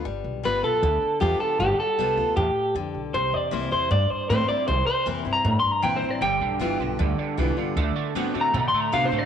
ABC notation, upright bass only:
X:1
M:4/4
L:1/8
Q:1/4=156
K:Gmix
V:1 name="Upright bass" clef=bass
G,,, B,,, G,,, B,,, D,, z E,, z | G,,, z C,, D,, E,, z F,, B,,, | C,, E,, C,, E,, G,, z A,, z | C,, z F,, G,, A,, z _B,, A,,, |
G,,, B,,, G,,, B,,, D,, z C,, z | D,, z G,, A,, B,, z C, A,, |]